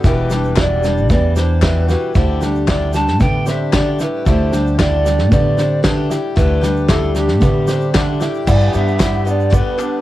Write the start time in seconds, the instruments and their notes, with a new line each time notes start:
Already playing: steel-string acoustic guitar G3 D4
0.04 upright bass E1, steel-string acoustic guitar E2 B2 E3 G3 D4 G4, upright piano E4, pan flute B4, kick, snare, shaker
0.30 steel-string acoustic guitar G3 D4 G4, upright piano D4, snare, shaker
0.35 steel-string acoustic guitar E3
0.44 shaker
0.56 steel-string acoustic guitar E2 B2 E3 G3 D4, upright piano E4, pan flute D5, kick, snare, clap, shaker
0.61 steel-string acoustic guitar G4
0.83 steel-string acoustic guitar E3 G3 D4 G4, upright piano D4, snare, shaker
0.97 shaker
1.09 upright bass E2, steel-string acoustic guitar B2 E3 G3 D4 G4, upright piano B3, pan flute D5, kick, snare, shaker
1.36 steel-string acoustic guitar E3 G3 D4 G4, upright piano D4, pan flute C5, snare, shaker
1.62 steel-string acoustic guitar E2 B2 E3 G3 D4 G4, upright piano E4, pan flute B4, kick, snare, clap, shaker
1.88 steel-string acoustic guitar E3 G3 D4 E4 G4, upright piano F#4, pan flute B4, snare, shaker
2.15 upright bass D2, steel-string acoustic guitar D3 A3 D4 G4, upright piano E4, pan flute C5, kick, snare, shaker
2.41 steel-string acoustic guitar G3 A3 D4 G4, upright piano D4, snare, shaker
2.55 shaker
2.67 steel-string acoustic guitar D3 A3 D4 G4, upright piano E4, pan flute D5, kick, snare, clap, shaker
2.93 steel-string acoustic guitar G3 A3 D4 G4, upright piano D4, pan flute A5, snare, shaker
3.07 snare, shaker
3.20 steel-string acoustic guitar A2 D3 A3 D4 G4, upright bass D3, upright piano B3, pan flute G5, kick, snare, shaker
3.46 steel-string acoustic guitar A3 D4 G4, upright piano C4, pan flute E5, snare, shaker
3.73 steel-string acoustic guitar D3 A3 D4 G4, upright piano D4, pan flute D5, kick, snare, clap, shaker
3.99 steel-string acoustic guitar A3 D4 G4, upright piano E4, pan flute B4, snare, shaker
4.26 upright bass D2, steel-string acoustic guitar D3 A3 D4 G4, upright piano E4, pan flute C5, kick, snare, shaker
4.52 steel-string acoustic guitar G3 A3 D4 G4, upright piano D4, snare, shaker
4.67 shaker
4.78 steel-string acoustic guitar D3 A3 D4 G4, upright piano E4, pan flute D5, kick, snare, clap, shaker
5.05 steel-string acoustic guitar G3 A3 D4 G4, upright piano D4, snare, shaker
5.19 snare, shaker
5.31 steel-string acoustic guitar A2 D3 A3 D4 G4, upright bass D3, upright piano B3, pan flute D5, kick, snare, shaker
5.57 steel-string acoustic guitar A3 D4 G4, upright piano C4, snare, shaker
5.83 steel-string acoustic guitar D3 A3 D4 G4, upright piano D4, pan flute B4, kick, snare, clap, shaker
6.10 steel-string acoustic guitar A3 D4 G4, upright piano E4, snare, shaker
6.36 upright bass D2, steel-string acoustic guitar D3 A3 D4 G4, upright piano E4, pan flute B4, kick, snare, shaker
6.61 steel-string acoustic guitar G3 A3 D4 G4, upright piano D4, snare, shaker
6.76 shaker
6.88 steel-string acoustic guitar D3 A3 D4 G4, upright piano E4, pan flute A4, kick, snare, clap, shaker
7.15 steel-string acoustic guitar G3 A3 D4 G4, upright piano D4, pan flute G4, snare, shaker
7.28 snare, shaker
7.41 steel-string acoustic guitar A2 D3 A3 D4 G4, upright bass D3, upright piano B3, kick, snare, shaker
7.68 steel-string acoustic guitar A3 D4 G4, upright piano C4, snare, shaker
7.81 shaker
7.94 steel-string acoustic guitar D3 A3 D4 G4, upright piano D4, kick, snare, clap, shaker
8.20 steel-string acoustic guitar A3 D4 G4, upright piano E4, snare, shaker
8.34 shaker
8.47 steel-string acoustic guitar G2 D3 G3 B3 D4 G4, upright bass G2, harmonium D3 G3 B3 G4, upright piano E4, pan flute D5, kick, crash, shaker
8.61 shaker
8.72 upright bass G2, steel-string acoustic guitar G3 B3 D4 G4, upright piano D4, pan flute E5, shaker
8.88 shaker
8.98 steel-string acoustic guitar G3 B3 D4 G4, upright piano E4, kick, snare, clap, shaker
9.25 steel-string acoustic guitar G3 B3 D4 G4, upright piano D4, shaker
9.29 pan flute D5
9.40 shaker
9.50 steel-string acoustic guitar G2 D3 G3 B3 D4 G4, upright piano B3, kick, shaker
9.56 pan flute B4
9.78 steel-string acoustic guitar G3 B3 D4 G4, upright piano D4, clap, shaker